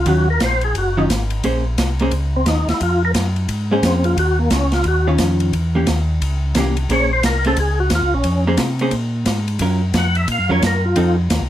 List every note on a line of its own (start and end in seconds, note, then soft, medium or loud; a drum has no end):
0.06 0.40 D#2 medium
0.06 0.26 D#3 medium
0.06 0.26 F#3 medium
0.06 0.26 C#4 medium
0.06 0.26 F4 medium
0.06 0.29 F#4 medium
0.06 kick soft
0.06 ride medium
0.30 0.42 A#4 loud
0.40 0.74 A#1 medium
0.40 0.63 C5 medium
0.40 kick soft
0.40 snare medium
0.40 hi-hat pedal medium
0.40 ride medium
0.61 0.76 G#4 medium
0.61 ride soft
0.75 1.08 F#1 medium
0.75 0.97 F#4 medium
0.75 kick soft
0.75 ride medium
0.97 1.09 D#3 medium
0.97 1.09 F#3 medium
0.97 1.09 C#4 medium
0.97 1.06 D#4 medium
0.97 1.09 F4 medium
1.09 1.43 G#1 loud
1.09 kick soft
1.09 snare medium
1.09 hi-hat pedal medium
1.09 ride medium
1.30 ride medium
1.43 1.77 A#1 medium
1.43 1.63 A#3 medium
1.43 1.63 C#4 medium
1.43 1.63 G#4 medium
1.43 1.64 C5 medium
1.43 kick soft
1.43 ride medium
1.78 2.11 C2 medium
1.78 kick soft
1.78 snare medium
1.78 hi-hat pedal medium
1.78 ride medium
1.99 2.12 A#3 medium
1.99 2.12 C#4 medium
1.99 2.12 G#4 medium
1.99 2.12 C5 medium
1.99 ride soft
2.11 2.45 C#2 medium
2.11 kick soft
2.11 ride medium
2.36 2.47 C4 medium
2.46 2.66 D#2 medium
2.46 2.68 D#4 medium
2.46 kick soft
2.46 snare medium
2.46 hi-hat pedal medium
2.46 ride medium
2.67 2.73 D#2 soft
2.67 2.81 E4 medium
2.67 snare medium
2.67 ride soft
2.80 3.14 F2 medium
2.80 3.03 F4 medium
2.80 kick soft
2.80 ride medium
3.05 3.12 A#4 loud
3.14 3.48 F#2 medium
3.14 kick soft
3.14 snare medium
3.14 hi-hat pedal medium
3.14 ride medium
3.36 ride soft
3.49 3.82 G#2 medium
3.49 kick soft
3.49 ride medium
3.71 3.84 G#3 medium
3.71 4.15 A#3 medium
3.71 4.16 C#4 medium
3.71 4.16 G#4 medium
3.71 4.16 C5 medium
3.83 4.16 F2 medium
3.83 4.05 C4 medium
3.83 kick soft
3.83 snare medium
3.83 hi-hat pedal soft
3.83 ride medium
4.04 4.17 F4 medium
4.04 ride medium
4.17 4.50 D#2 medium
4.17 4.39 F#4 loud
4.17 kick soft
4.17 ride medium
4.39 4.51 A#3 medium
4.50 4.84 C#2 medium
4.50 4.73 C#4 medium
4.50 kick soft
4.50 snare medium
4.50 hi-hat pedal medium
4.50 ride medium
4.72 4.86 F4 medium
4.72 snare medium
4.72 ride soft
4.84 5.18 D#2 medium
4.84 kick soft
4.84 ride medium
4.88 5.07 F#4 medium
5.07 5.51 D#3 medium
5.07 5.15 C#4 medium
5.07 5.52 C#4 medium
5.07 5.51 F4 medium
5.18 5.52 F2 medium
5.18 kick soft
5.18 snare medium
5.18 hi-hat pedal medium
5.18 ride medium
5.40 ride medium
5.53 5.86 E2 medium
5.53 kick soft
5.53 ride medium
5.75 5.86 E3 medium
5.75 5.86 A#3 medium
5.75 5.87 C#4 medium
5.75 5.87 G4 medium
5.87 6.20 D#2 medium
5.87 kick soft
5.87 snare medium
5.87 hi-hat pedal medium
5.87 ride medium
6.21 6.54 C#2 medium
6.21 kick soft
6.21 ride medium
6.55 6.88 C2 medium
6.55 6.75 E3 medium
6.55 6.75 A#3 medium
6.55 6.75 C#4 medium
6.55 6.76 G4 medium
6.55 kick soft
6.55 snare medium
6.55 hi-hat pedal medium
6.55 ride medium
6.77 ride medium
6.89 7.22 A#1 medium
6.89 7.09 A#3 medium
6.89 7.09 C#4 medium
6.89 7.09 G#4 medium
6.89 7.10 C5 medium
6.89 7.11 C#5 medium
6.89 kick soft
6.89 ride medium
7.13 7.24 C5 loud
7.23 7.56 C2 medium
7.23 7.45 A#4 medium
7.23 kick soft
7.23 snare medium
7.23 hi-hat pedal medium
7.23 ride medium
7.44 7.56 A#3 medium
7.44 7.57 C#4 medium
7.44 7.57 G#4 medium
7.44 7.58 A4 medium
7.44 7.57 C5 medium
7.44 ride medium
7.56 7.90 C#2 medium
7.56 7.79 G#4 medium
7.56 kick soft
7.56 ride medium
7.80 7.92 F#4 medium
7.90 8.02 D#2 loud
7.90 kick soft
7.90 snare medium
7.90 hi-hat pedal medium
7.90 ride medium
7.95 8.14 F4 medium
8.02 8.13 C#2 medium
8.13 8.24 A#1 medium
8.13 8.45 C#4 medium
8.24 8.57 F2 medium
8.24 kick soft
8.24 ride medium
8.47 8.58 A#3 medium
8.47 8.58 C#4 medium
8.47 8.59 G#4 medium
8.47 8.59 C5 medium
8.57 8.91 C3 medium
8.57 kick soft
8.57 snare medium
8.57 hi-hat pedal medium
8.57 ride medium
8.79 8.92 A#3 medium
8.79 8.92 C#4 medium
8.79 8.93 G#4 medium
8.79 8.93 C5 medium
8.79 ride soft
8.91 9.25 A#2 medium
8.91 kick soft
8.91 ride medium
9.26 9.59 G#2 loud
9.26 kick soft
9.26 snare medium
9.26 hi-hat pedal medium
9.26 ride medium
9.48 ride medium
9.59 9.93 F#2 medium
9.59 9.80 F#3 medium
9.59 9.80 C#4 medium
9.59 9.80 F4 medium
9.59 9.81 A#4 medium
9.59 kick soft
9.59 ride medium
9.94 10.27 F2 medium
9.94 10.17 F#5 medium
9.94 kick soft
9.94 snare medium
9.94 hi-hat pedal medium
9.94 ride medium
10.15 10.28 E5 medium
10.15 ride soft
10.28 10.39 A#2 medium
10.28 kick soft
10.28 ride medium
10.32 10.51 F5 medium
10.39 10.50 F#2 medium
10.49 10.61 F2 medium
10.49 10.61 F#3 medium
10.49 10.61 C#4 medium
10.49 10.62 F4 medium
10.49 10.62 A#4 medium
10.49 10.63 C#5 medium
10.62 10.95 F#2 medium
10.62 kick soft
10.62 snare medium
10.62 hi-hat pedal medium
10.62 ride medium
10.67 10.85 A#4 medium
10.85 11.16 F4 medium
10.96 11.29 F2 medium
10.96 11.16 F3 medium
10.96 11.15 C4 medium
10.96 11.16 D#4 medium
10.96 11.16 A4 medium
10.96 kick soft
10.96 ride medium
11.30 11.41 D#2 loud
11.30 kick soft
11.30 snare medium
11.30 hi-hat pedal medium
11.30 ride medium
11.40 11.49 C2 medium